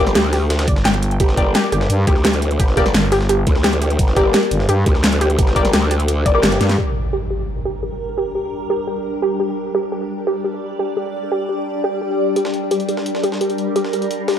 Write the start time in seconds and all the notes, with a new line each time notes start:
Already playing: G1
0.07 snare, closed hi-hat
0.15 D2 G4, snare, closed hi-hat
0.33 G4, snare, closed hi-hat, open hi-hat
0.50 snare, closed hi-hat
0.59 snare, closed hi-hat
0.68 G1 D5, kick, closed hi-hat
0.76 snare
0.85 G5, snare, closed hi-hat
0.94 snare, closed hi-hat
1.03 closed hi-hat
1.11 closed hi-hat
1.20 G1 G4, kick, closed hi-hat
1.29 snare
1.37 A#3 G4 D5, kick, closed hi-hat
1.55 G4, snare, closed hi-hat
1.64 closed hi-hat
1.72 G1 G4, closed hi-hat
1.81 snare
1.90 G2, closed hi-hat
2.07 D2 G4, kick, closed hi-hat
2.16 snare
2.25 G4, snare, closed hi-hat
2.33 closed hi-hat
2.42 closed hi-hat
2.51 closed hi-hat
2.60 G1 G4, kick, closed hi-hat
2.68 snare
2.77 A#3 G4 D5, kick, closed hi-hat
2.86 snare, closed hi-hat
2.94 G1, snare, closed hi-hat
3.12 G4, snare, closed hi-hat, open hi-hat
3.21 snare
3.29 G4, closed hi-hat
3.47 D2, kick, closed hi-hat
3.55 snare
3.64 G4, snare, closed hi-hat
3.73 snare, closed hi-hat
3.82 G4, closed hi-hat
3.90 closed hi-hat
3.99 G1, kick, closed hi-hat
4.08 snare
4.17 A#3 G4 D5, kick, closed hi-hat
4.34 G4, snare, closed hi-hat
4.43 closed hi-hat
4.51 G1, closed hi-hat
4.60 snare
4.69 G2 G4, closed hi-hat
4.86 D2 G4, kick, closed hi-hat
4.95 snare
5.04 snare, closed hi-hat
5.12 closed hi-hat
5.21 G4, closed hi-hat
5.30 closed hi-hat
5.39 G1 G4, kick, closed hi-hat
5.47 snare
5.56 A#3 G4 D5, kick, closed hi-hat
5.65 snare, closed hi-hat
5.73 D2 G4, snare, closed hi-hat
5.91 G4, closed hi-hat
6.00 closed hi-hat
6.08 closed hi-hat
6.26 G1 D5, kick, closed hi-hat
6.35 A#3 G4 D5
6.43 G1 G4, snare, closed hi-hat
6.52 snare, closed hi-hat
6.61 G2, snare, closed hi-hat
6.69 snare, closed hi-hat
6.78 G3 D4 G4 A#4, impact
7.13 G4
7.30 G4
7.65 G4
7.83 G4
8.18 G4
8.35 G4
8.70 G4
8.87 G4
9.22 G4
9.40 G4
9.57 D5
9.75 G4
9.92 G4
10.27 G4
10.44 G4
10.79 G4
10.97 G4
11.32 G4
11.49 G4
11.84 G4
12.01 G4
12.36 G4 A#4, closed hi-hat
12.45 snare
12.54 closed hi-hat
12.71 G4, closed hi-hat
12.80 closed hi-hat
12.89 G4, closed hi-hat
12.97 snare
13.06 closed hi-hat
13.15 snare
13.23 G4, closed hi-hat
13.32 snare
13.41 G4, closed hi-hat
13.50 closed hi-hat
13.58 closed hi-hat
13.76 G4, closed hi-hat
13.85 snare
13.93 G4, closed hi-hat
14.02 closed hi-hat
14.11 closed hi-hat
14.28 G4, snare, open hi-hat